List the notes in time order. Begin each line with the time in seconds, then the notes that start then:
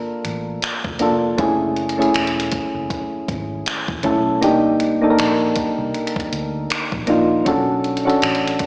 Already playing: A#3 D4 F4 A4 A#4
0.25 A1, closed hi-hat
0.62 finger snap, closed hi-hat
0.84 F1, kick
0.99 F1 A#3 D4 F4 A4, closed hi-hat
1.38 F#1 A3 C#4 E4 G#4, kick, closed hi-hat
1.76 closed hi-hat
1.89 closed hi-hat
1.98 A3 C#4 E4 G#4, closed hi-hat
2.14 E1, finger snap, closed hi-hat
2.27 closed hi-hat
2.40 closed hi-hat
2.52 kick, closed hi-hat
2.75 F#1
2.90 kick, closed hi-hat
3.28 G#1, kick, closed hi-hat
3.66 finger snap, closed hi-hat
3.88 E1, kick
4.03 B1 A3 C#4 E4 A4, kick, closed hi-hat
4.41 C2 A#3 D4 D#4 G4, closed hi-hat
4.80 closed hi-hat
5.02 A#3 D4 D#4 A4
5.10 A#4
5.19 A#1, finger snap, closed hi-hat
5.56 kick, closed hi-hat
5.78 C2
5.94 closed hi-hat
6.07 closed hi-hat
6.16 kick, closed hi-hat
6.33 D2, closed hi-hat
6.70 finger snap, closed hi-hat
6.92 A#1, kick
7.07 A#1 A#3 D4 D#4 F4, closed hi-hat
7.45 B1 C#4 D4 F#4 A4, kick, closed hi-hat
7.84 closed hi-hat
7.97 closed hi-hat
8.05 C#4 D4 F#4 A4
8.10 closed hi-hat
8.22 A1, finger snap, closed hi-hat
8.35 closed hi-hat
8.47 closed hi-hat
8.59 kick, closed hi-hat